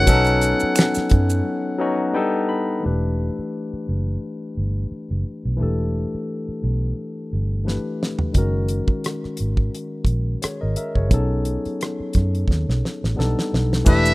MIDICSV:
0, 0, Header, 1, 6, 480
1, 0, Start_track
1, 0, Tempo, 689655
1, 48, Time_signature, 4, 2, 24, 8
1, 9843, End_track
2, 0, Start_track
2, 0, Title_t, "Muted trumpet"
2, 0, Program_c, 0, 59
2, 0, Note_on_c, 0, 78, 116
2, 1470, Note_off_c, 0, 78, 0
2, 9661, Note_on_c, 0, 76, 106
2, 9843, Note_off_c, 0, 76, 0
2, 9843, End_track
3, 0, Start_track
3, 0, Title_t, "Tine electric piano"
3, 0, Program_c, 1, 4
3, 0, Control_c, 1, 64, 127
3, 43, Note_on_c, 1, 54, 104
3, 50, Note_on_c, 1, 59, 92
3, 53, Note_on_c, 1, 61, 99
3, 58, Control_c, 1, 64, 0
3, 58, Note_on_c, 1, 63, 92
3, 64, Note_on_c, 1, 69, 110
3, 181, Control_c, 1, 64, 127
3, 831, Note_off_c, 1, 54, 0
3, 834, Note_off_c, 1, 59, 0
3, 836, Note_off_c, 1, 61, 0
3, 838, Note_off_c, 1, 63, 0
3, 841, Note_off_c, 1, 69, 0
3, 1241, Note_on_c, 1, 54, 88
3, 1247, Note_on_c, 1, 59, 74
3, 1251, Note_on_c, 1, 61, 73
3, 1258, Note_on_c, 1, 63, 83
3, 1262, Note_on_c, 1, 66, 93
3, 1483, Note_off_c, 1, 59, 0
3, 1484, Note_on_c, 1, 55, 82
3, 1485, Note_off_c, 1, 54, 0
3, 1490, Note_off_c, 1, 61, 0
3, 1491, Note_on_c, 1, 59, 73
3, 1493, Note_off_c, 1, 63, 0
3, 1493, Note_on_c, 1, 79, 69
3, 1494, Note_on_c, 1, 62, 71
3, 1495, Note_off_c, 1, 66, 0
3, 1496, Control_c, 1, 64, 0
3, 1500, Note_on_c, 1, 63, 78
3, 1505, Note_on_c, 1, 69, 90
3, 1624, Control_c, 1, 64, 127
3, 1714, Note_off_c, 1, 79, 0
3, 1731, Note_on_c, 1, 83, 75
3, 1884, Note_off_c, 1, 55, 0
3, 1888, Note_off_c, 1, 59, 0
3, 1889, Note_off_c, 1, 62, 0
3, 1892, Note_off_c, 1, 63, 0
3, 1895, Note_off_c, 1, 69, 0
3, 1952, Note_on_c, 1, 52, 58
3, 1953, Note_off_c, 1, 83, 0
3, 1963, Note_on_c, 1, 57, 55
3, 1973, Note_on_c, 1, 62, 50
3, 1977, Control_c, 1, 64, 0
3, 1981, Note_on_c, 1, 67, 55
3, 1993, Note_on_c, 1, 71, 70
3, 2117, Control_c, 1, 64, 127
3, 3852, Note_off_c, 1, 52, 0
3, 3858, Note_off_c, 1, 57, 0
3, 3863, Note_off_c, 1, 62, 0
3, 3867, Note_off_c, 1, 67, 0
3, 3873, Note_off_c, 1, 71, 0
3, 3874, Note_on_c, 1, 52, 59
3, 3884, Note_on_c, 1, 57, 59
3, 3896, Note_on_c, 1, 62, 55
3, 3904, Note_on_c, 1, 67, 52
3, 3916, Note_on_c, 1, 69, 67
3, 5293, Note_off_c, 1, 52, 0
3, 5298, Note_off_c, 1, 57, 0
3, 5304, Note_off_c, 1, 62, 0
3, 5308, Note_off_c, 1, 67, 0
3, 5314, Note_off_c, 1, 69, 0
3, 5319, Note_on_c, 1, 52, 43
3, 5323, Note_on_c, 1, 57, 44
3, 5329, Note_on_c, 1, 62, 40
3, 5334, Note_on_c, 1, 67, 41
3, 5340, Note_on_c, 1, 71, 56
3, 5794, Note_on_c, 1, 51, 60
3, 5803, Note_on_c, 1, 56, 61
3, 5804, Note_off_c, 1, 52, 0
3, 5806, Note_off_c, 1, 57, 0
3, 5809, Note_off_c, 1, 62, 0
3, 5811, Note_off_c, 1, 67, 0
3, 5813, Note_on_c, 1, 61, 54
3, 5814, Note_off_c, 1, 71, 0
3, 5817, Control_c, 1, 64, 0
3, 5824, Note_on_c, 1, 66, 55
3, 5834, Note_on_c, 1, 70, 70
3, 5940, Control_c, 1, 64, 127
3, 7233, Note_off_c, 1, 70, 0
3, 7253, Note_on_c, 1, 73, 48
3, 7258, Note_on_c, 1, 68, 38
3, 7375, Note_off_c, 1, 73, 0
3, 7378, Note_off_c, 1, 68, 0
3, 7384, Note_on_c, 1, 75, 51
3, 7386, Note_on_c, 1, 70, 45
3, 7485, Note_off_c, 1, 75, 0
3, 7487, Note_off_c, 1, 70, 0
3, 7495, Note_on_c, 1, 76, 55
3, 7499, Note_on_c, 1, 70, 51
3, 7616, Note_off_c, 1, 76, 0
3, 7619, Note_off_c, 1, 70, 0
3, 7621, Note_on_c, 1, 73, 54
3, 7625, Note_on_c, 1, 68, 48
3, 7693, Note_off_c, 1, 51, 0
3, 7698, Note_off_c, 1, 56, 0
3, 7703, Note_off_c, 1, 61, 0
3, 7708, Note_off_c, 1, 66, 0
3, 7710, Note_on_c, 1, 54, 62
3, 7721, Note_on_c, 1, 59, 51
3, 7730, Note_on_c, 1, 61, 56
3, 7736, Control_c, 1, 64, 0
3, 7742, Note_on_c, 1, 63, 58
3, 7753, Note_on_c, 1, 69, 76
3, 7843, Control_c, 1, 64, 127
3, 7848, Note_off_c, 1, 73, 0
3, 7851, Note_off_c, 1, 68, 0
3, 9131, Note_off_c, 1, 54, 0
3, 9137, Note_off_c, 1, 59, 0
3, 9141, Note_off_c, 1, 61, 0
3, 9147, Note_off_c, 1, 63, 0
3, 9153, Note_off_c, 1, 69, 0
3, 9158, Note_on_c, 1, 55, 64
3, 9163, Note_on_c, 1, 59, 58
3, 9168, Note_on_c, 1, 62, 56
3, 9176, Note_on_c, 1, 63, 49
3, 9177, Control_c, 1, 64, 0
3, 9179, Note_on_c, 1, 69, 69
3, 9315, Control_c, 1, 64, 127
3, 9636, Note_on_c, 1, 52, 92
3, 9640, Note_off_c, 1, 62, 0
3, 9641, Note_on_c, 1, 57, 86
3, 9643, Note_off_c, 1, 55, 0
3, 9646, Note_off_c, 1, 59, 0
3, 9648, Note_on_c, 1, 62, 78
3, 9652, Note_off_c, 1, 63, 0
3, 9652, Note_on_c, 1, 67, 78
3, 9653, Note_off_c, 1, 69, 0
3, 9657, Control_c, 1, 64, 0
3, 9657, Note_on_c, 1, 71, 94
3, 9769, Control_c, 1, 64, 127
3, 9843, Note_off_c, 1, 52, 0
3, 9843, Note_off_c, 1, 57, 0
3, 9843, Note_off_c, 1, 62, 0
3, 9843, Note_off_c, 1, 67, 0
3, 9843, Note_off_c, 1, 71, 0
3, 9843, End_track
4, 0, Start_track
4, 0, Title_t, "Fingered electric bass"
4, 0, Program_c, 2, 33
4, 59, Note_on_c, 2, 35, 95
4, 364, Note_off_c, 2, 35, 0
4, 784, Note_on_c, 2, 42, 102
4, 977, Note_off_c, 2, 42, 0
4, 1988, Note_on_c, 2, 28, 77
4, 2289, Note_off_c, 2, 28, 0
4, 2706, Note_on_c, 2, 30, 66
4, 2898, Note_off_c, 2, 30, 0
4, 3183, Note_on_c, 2, 31, 67
4, 3377, Note_off_c, 2, 31, 0
4, 3555, Note_on_c, 2, 30, 64
4, 3639, Note_off_c, 2, 30, 0
4, 3795, Note_on_c, 2, 35, 60
4, 3903, Note_on_c, 2, 28, 75
4, 3913, Note_off_c, 2, 35, 0
4, 4206, Note_off_c, 2, 28, 0
4, 4618, Note_on_c, 2, 35, 74
4, 4814, Note_off_c, 2, 35, 0
4, 5101, Note_on_c, 2, 31, 76
4, 5405, Note_off_c, 2, 31, 0
4, 5820, Note_on_c, 2, 30, 85
4, 6124, Note_off_c, 2, 30, 0
4, 6545, Note_on_c, 2, 32, 67
4, 6738, Note_off_c, 2, 32, 0
4, 7000, Note_on_c, 2, 34, 65
4, 7203, Note_off_c, 2, 34, 0
4, 7398, Note_on_c, 2, 32, 65
4, 7481, Note_off_c, 2, 32, 0
4, 7631, Note_on_c, 2, 30, 67
4, 7741, Note_off_c, 2, 30, 0
4, 7741, Note_on_c, 2, 35, 83
4, 8045, Note_off_c, 2, 35, 0
4, 8464, Note_on_c, 2, 42, 78
4, 8657, Note_off_c, 2, 42, 0
4, 8691, Note_on_c, 2, 39, 73
4, 8799, Note_off_c, 2, 39, 0
4, 8830, Note_on_c, 2, 35, 77
4, 8916, Note_off_c, 2, 35, 0
4, 9074, Note_on_c, 2, 33, 79
4, 9158, Note_off_c, 2, 33, 0
4, 9179, Note_on_c, 2, 35, 81
4, 9284, Note_off_c, 2, 35, 0
4, 9421, Note_on_c, 2, 35, 77
4, 9615, Note_off_c, 2, 35, 0
4, 9657, Note_on_c, 2, 28, 87
4, 9843, Note_off_c, 2, 28, 0
4, 9843, End_track
5, 0, Start_track
5, 0, Title_t, "Muted fingered electric bass strokes"
5, 438, Note_on_c, 9, 29, 42
5, 508, Note_off_c, 9, 29, 0
5, 676, Note_on_c, 9, 29, 39
5, 746, Note_off_c, 9, 29, 0
5, 2357, Note_on_c, 9, 29, 34
5, 2427, Note_off_c, 9, 29, 0
5, 2598, Note_on_c, 9, 29, 35
5, 2668, Note_off_c, 9, 29, 0
5, 3422, Note_on_c, 9, 29, 36
5, 3491, Note_off_c, 9, 29, 0
5, 4277, Note_on_c, 9, 29, 37
5, 4347, Note_off_c, 9, 29, 0
5, 4515, Note_on_c, 9, 29, 34
5, 4584, Note_off_c, 9, 29, 0
5, 6186, Note_on_c, 9, 29, 38
5, 6256, Note_off_c, 9, 29, 0
5, 6438, Note_on_c, 9, 29, 31
5, 6508, Note_off_c, 9, 29, 0
5, 7267, Note_on_c, 9, 29, 37
5, 7337, Note_off_c, 9, 29, 0
5, 8116, Note_on_c, 9, 29, 39
5, 8186, Note_off_c, 9, 29, 0
5, 8353, Note_on_c, 9, 29, 33
5, 8423, Note_off_c, 9, 29, 0
5, 9843, End_track
6, 0, Start_track
6, 0, Title_t, "Drums"
6, 48, Note_on_c, 9, 42, 92
6, 52, Note_on_c, 9, 36, 115
6, 52, Note_on_c, 9, 82, 67
6, 118, Note_off_c, 9, 42, 0
6, 121, Note_off_c, 9, 36, 0
6, 121, Note_off_c, 9, 82, 0
6, 171, Note_on_c, 9, 42, 43
6, 184, Note_on_c, 9, 82, 34
6, 241, Note_off_c, 9, 42, 0
6, 254, Note_off_c, 9, 82, 0
6, 288, Note_on_c, 9, 42, 66
6, 296, Note_on_c, 9, 82, 42
6, 358, Note_off_c, 9, 42, 0
6, 366, Note_off_c, 9, 82, 0
6, 417, Note_on_c, 9, 82, 41
6, 486, Note_off_c, 9, 82, 0
6, 527, Note_on_c, 9, 26, 64
6, 527, Note_on_c, 9, 82, 62
6, 537, Note_on_c, 9, 42, 80
6, 548, Note_off_c, 9, 26, 0
6, 548, Note_on_c, 9, 26, 85
6, 549, Note_on_c, 9, 38, 112
6, 597, Note_off_c, 9, 82, 0
6, 607, Note_off_c, 9, 42, 0
6, 617, Note_off_c, 9, 26, 0
6, 619, Note_off_c, 9, 38, 0
6, 658, Note_on_c, 9, 82, 43
6, 675, Note_on_c, 9, 38, 29
6, 728, Note_off_c, 9, 82, 0
6, 745, Note_off_c, 9, 38, 0
6, 762, Note_on_c, 9, 42, 78
6, 775, Note_on_c, 9, 36, 93
6, 832, Note_off_c, 9, 42, 0
6, 845, Note_off_c, 9, 36, 0
6, 903, Note_on_c, 9, 82, 42
6, 973, Note_off_c, 9, 82, 0
6, 5347, Note_on_c, 9, 38, 55
6, 5416, Note_off_c, 9, 38, 0
6, 5587, Note_on_c, 9, 38, 73
6, 5657, Note_off_c, 9, 38, 0
6, 5698, Note_on_c, 9, 43, 78
6, 5767, Note_off_c, 9, 43, 0
6, 5807, Note_on_c, 9, 42, 82
6, 5810, Note_on_c, 9, 36, 88
6, 5877, Note_off_c, 9, 42, 0
6, 5880, Note_off_c, 9, 36, 0
6, 6045, Note_on_c, 9, 42, 54
6, 6114, Note_off_c, 9, 42, 0
6, 6179, Note_on_c, 9, 36, 78
6, 6248, Note_off_c, 9, 36, 0
6, 6294, Note_on_c, 9, 42, 71
6, 6306, Note_on_c, 9, 37, 96
6, 6363, Note_off_c, 9, 42, 0
6, 6376, Note_off_c, 9, 37, 0
6, 6433, Note_on_c, 9, 37, 27
6, 6503, Note_off_c, 9, 37, 0
6, 6521, Note_on_c, 9, 42, 61
6, 6591, Note_off_c, 9, 42, 0
6, 6662, Note_on_c, 9, 36, 66
6, 6731, Note_off_c, 9, 36, 0
6, 6783, Note_on_c, 9, 42, 60
6, 6852, Note_off_c, 9, 42, 0
6, 6992, Note_on_c, 9, 36, 74
6, 7004, Note_on_c, 9, 42, 54
6, 7061, Note_off_c, 9, 36, 0
6, 7074, Note_off_c, 9, 42, 0
6, 7255, Note_on_c, 9, 42, 82
6, 7265, Note_on_c, 9, 37, 97
6, 7325, Note_off_c, 9, 42, 0
6, 7335, Note_off_c, 9, 37, 0
6, 7490, Note_on_c, 9, 42, 57
6, 7559, Note_off_c, 9, 42, 0
6, 7624, Note_on_c, 9, 36, 66
6, 7694, Note_off_c, 9, 36, 0
6, 7732, Note_on_c, 9, 36, 95
6, 7732, Note_on_c, 9, 42, 78
6, 7801, Note_off_c, 9, 42, 0
6, 7802, Note_off_c, 9, 36, 0
6, 7970, Note_on_c, 9, 42, 55
6, 8040, Note_off_c, 9, 42, 0
6, 8111, Note_on_c, 9, 42, 25
6, 8181, Note_off_c, 9, 42, 0
6, 8219, Note_on_c, 9, 42, 72
6, 8231, Note_on_c, 9, 37, 94
6, 8289, Note_off_c, 9, 42, 0
6, 8301, Note_off_c, 9, 37, 0
6, 8445, Note_on_c, 9, 42, 60
6, 8456, Note_on_c, 9, 36, 83
6, 8475, Note_on_c, 9, 37, 33
6, 8514, Note_off_c, 9, 42, 0
6, 8525, Note_off_c, 9, 36, 0
6, 8544, Note_off_c, 9, 37, 0
6, 8593, Note_on_c, 9, 42, 31
6, 8663, Note_off_c, 9, 42, 0
6, 8683, Note_on_c, 9, 36, 71
6, 8706, Note_on_c, 9, 38, 42
6, 8753, Note_off_c, 9, 36, 0
6, 8776, Note_off_c, 9, 38, 0
6, 8837, Note_on_c, 9, 38, 40
6, 8906, Note_off_c, 9, 38, 0
6, 8946, Note_on_c, 9, 38, 53
6, 9015, Note_off_c, 9, 38, 0
6, 9077, Note_on_c, 9, 38, 48
6, 9147, Note_off_c, 9, 38, 0
6, 9187, Note_on_c, 9, 38, 68
6, 9257, Note_off_c, 9, 38, 0
6, 9318, Note_on_c, 9, 38, 68
6, 9387, Note_off_c, 9, 38, 0
6, 9426, Note_on_c, 9, 38, 67
6, 9496, Note_off_c, 9, 38, 0
6, 9556, Note_on_c, 9, 38, 68
6, 9625, Note_off_c, 9, 38, 0
6, 9644, Note_on_c, 9, 49, 92
6, 9647, Note_on_c, 9, 82, 70
6, 9650, Note_on_c, 9, 36, 119
6, 9714, Note_off_c, 9, 49, 0
6, 9717, Note_off_c, 9, 82, 0
6, 9719, Note_off_c, 9, 36, 0
6, 9782, Note_on_c, 9, 82, 42
6, 9843, Note_off_c, 9, 82, 0
6, 9843, End_track
0, 0, End_of_file